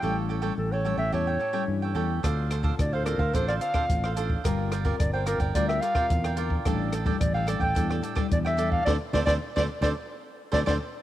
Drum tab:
HH |----------------|x-x-x-x-x-x-x-x-|x-x-x-xxx-x-xxx-|x-x-x-x-x-x-x-x-|
SD |----------------|r-r-r-r--r-r-r--|r-r-r-r--r-r-r--|r-r-r-r--r-r-r--|
BD |----------------|o--oo--oo--oo--o|o--oo--oo--oo--o|o--oo--oo--oo--o|

HH |----------------|
SD |o-oo-o-o----oo--|
BD |o-oo-o-o----oo--|